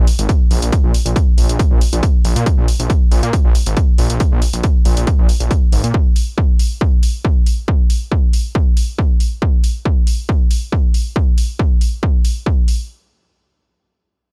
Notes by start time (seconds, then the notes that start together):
0.07 open hi-hat
0.19 G#1, closed hi-hat
0.29 kick, closed hi-hat
0.51 A#1, open hi-hat
0.62 A#1, closed hi-hat
0.72 kick, closed hi-hat
0.84 A#1
0.94 open hi-hat
1.06 A#1, closed hi-hat
1.16 kick, closed hi-hat
1.38 A#1, open hi-hat
1.49 A#1, closed hi-hat
1.59 kick, closed hi-hat
1.71 A#1
1.81 open hi-hat
1.93 A#1, closed hi-hat
2.03 kick, closed hi-hat
2.24 A#1, open hi-hat
2.36 A#2, closed hi-hat
2.46 kick, closed hi-hat
2.58 A#1
2.68 open hi-hat
2.79 A#1, closed hi-hat
2.90 kick, closed hi-hat
3.11 A#1, open hi-hat
3.23 A#2, closed hi-hat
3.33 kick, closed hi-hat
3.45 A#1
3.55 open hi-hat
3.66 G#1, closed hi-hat
3.77 kick, closed hi-hat
3.98 A#1, open hi-hat
4.10 A#1, closed hi-hat
4.20 kick, closed hi-hat
4.32 A#1
4.42 open hi-hat
4.53 A#1, closed hi-hat
4.63 kick, closed hi-hat
4.85 A#1, open hi-hat
4.97 A#1, closed hi-hat
5.07 kick, closed hi-hat
5.19 A#1
5.29 open hi-hat
5.40 A#1, closed hi-hat
5.51 kick, closed hi-hat
5.72 G#1, open hi-hat
5.84 A#2, closed hi-hat
5.94 kick
6.16 open hi-hat
6.38 kick
6.59 open hi-hat
6.81 kick
7.03 open hi-hat
7.25 kick
7.46 open hi-hat
7.68 kick
7.90 open hi-hat
8.12 kick
8.33 open hi-hat
8.55 kick
8.77 open hi-hat
8.98 kick
9.20 open hi-hat
9.42 kick
9.64 open hi-hat
9.85 kick
10.07 open hi-hat
10.29 kick
10.51 open hi-hat
10.72 kick
10.94 open hi-hat
11.16 kick
11.38 open hi-hat
11.59 kick
11.81 open hi-hat
12.03 kick
12.25 open hi-hat
12.46 kick
12.68 open hi-hat